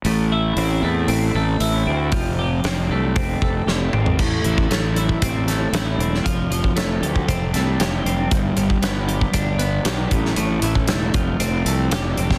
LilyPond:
<<
  \new Staff \with { instrumentName = "Clean electric guitar" } { \time 4/4 \key a \minor \tempo 4 = 116 a,8 e'8 c'8 a8 c'8 a8 e'8 c'8 | f8 g'8 c'8 a8 c'8 a8 g'8 c'8 | a,8 e8 a8 e'8 c'8 a8 e'8 c'8 | f8 f8 a8 g'8 c'8 a8 g'8 c'8 |
g,8 g8 b8 g'8 d'8 b8 g'8 a,8 | a,8 e8 a8 f8 c'8 a8 g'8 c'8 | }
  \new Staff \with { instrumentName = "Fingered electric bass" } { \clef bass \time 4/4 \key a \minor a,,4 a,,8 e,8 a,,8 a,,8 a,,8 d,8 | f,,4 f,,8 c,8 f,,8 f,,8 f,,8 gis,,8 | a,,8 a,,8 a,,4 a,,4 a,,8 e,,8 | f,,8 f,,8 f,,8 d,8 f,,8 c,8 f,,8 f,,8 |
g,,8 g,,8 g,,4 g,,4 b,,8 a,,8 | a,,8 a,,8 e,,8 f,,8 f,,8 c,8 f,,8 f,,8 | }
  \new DrumStaff \with { instrumentName = "Drums" } \drummode { \time 4/4 hho4 hho4 hho4 hho4 | <hho bd>4 <hho sn>4 <hho bd>8 bd8 sn8 toml16 tomfh16 | <cymc bd>8 hh16 bd16 <hh sn>8 hh16 bd16 <hh bd>8 <hh sn>8 <hh sn>8 hh16 sn16 | <hh bd>8 hh16 bd16 <hh sn>8 hh16 bd16 <hh bd>8 <hh sn>8 <hh sn>8 hh8 |
<hh bd>8 hh16 bd16 <hh sn>8 hh16 bd16 <hh bd>8 hh8 <hh sn>8 <hh bd>16 sn16 | hh8 hh16 bd16 <hh sn>8 <hh bd>8 hh8 hh8 <hh sn>8 hh16 <bd sn>16 | }
>>